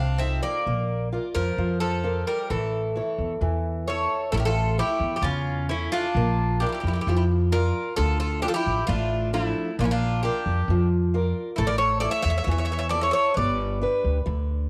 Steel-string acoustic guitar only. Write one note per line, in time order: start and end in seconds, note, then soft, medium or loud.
0.00 0.19 C3 medium
0.20 0.57 D#4 soft
0.20 0.57 F4 soft
0.20 0.58 A4 soft
0.67 1.11 A#3 medium
1.12 1.49 F4 soft
1.12 1.49 A#4 soft
1.12 1.50 D5 soft
1.58 2.03 F3 medium
2.04 2.40 F4 soft
2.04 2.41 A#4 soft
2.04 2.41 D5 soft
2.51 2.95 A3 medium
2.96 3.32 E4 soft
2.96 3.32 A4 soft
2.96 3.33 C#5 medium
3.41 3.86 E3 medium
3.87 4.24 E4 soft
3.87 4.24 A4 soft
3.87 4.24 C#5 soft
4.33 4.77 A3 medium
4.78 5.15 E4 medium
4.78 5.15 A4 soft
4.78 5.15 C#5 medium
5.24 5.68 C#3 medium
5.69 6.06 E4 soft
5.69 6.06 A4 soft
5.69 6.06 C#5 medium
6.17 6.60 A#3 medium
6.61 6.97 F4 soft
6.61 6.97 A#4 soft
6.61 6.97 D5 medium
7.08 7.51 F3 medium
7.52 7.88 F4 soft
7.52 7.88 A#4 soft
7.52 7.88 D5 medium
7.98 8.41 D3 medium
8.42 8.78 F3 medium
8.42 8.78 D4 soft
8.42 8.79 A4 medium
8.88 9.31 A3 medium
9.33 9.69 F3 soft
9.33 9.69 D4 medium
9.33 9.69 A4 medium
9.79 10.22 A#3 medium
10.24 10.60 F4 medium
10.24 10.60 A#4 soft
10.24 10.60 D5 medium
10.70 11.13 F3 medium
11.14 11.50 F4 medium
11.14 11.50 A#4 soft
11.14 11.50 D5 medium
11.59 12.02 A3 medium
12.03 12.39 E4 soft
12.03 12.39 A4 soft
12.03 12.39 C#5 medium
12.48 12.91 E3 medium
12.92 13.28 E4 medium
12.92 13.29 A4 soft
12.92 13.29 C#5 medium
13.38 13.81 G3 medium
13.81 14.18 D4 medium
13.81 14.18 G4 soft
13.81 14.18 B4 medium
14.26 14.70 D3 medium